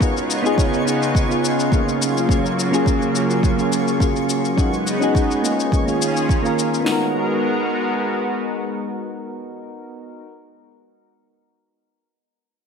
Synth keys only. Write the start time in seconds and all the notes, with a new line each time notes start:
0.00 B3 D#4 F4 G#4
0.43 B3 D#4 F4 G#4
0.85 B3 D#4 F4 G#4
1.29 B3 D#4 F4 G#4
1.71 A#3 C#4 F4 G#4
2.28 A#3 C#4 F4 G#4
2.71 A#3 C#4 F4 G#4
3.13 A#3 C#4 F4 G#4
3.56 A#3 C#4 F4 G#4
3.99 A#3 C#4 F4
4.03 G#4
4.56 C#4 D#4 F#4 G#4
5.00 C#4 D#4 F#4 G#4
5.42 A#3 C#4 F4 G#4
5.86 A#3 C#4 F4
5.90 G#4
6.43 A#3 C#4 F4 A#4
6.80 B3
6.85 D#4 F#4
6.92 A#4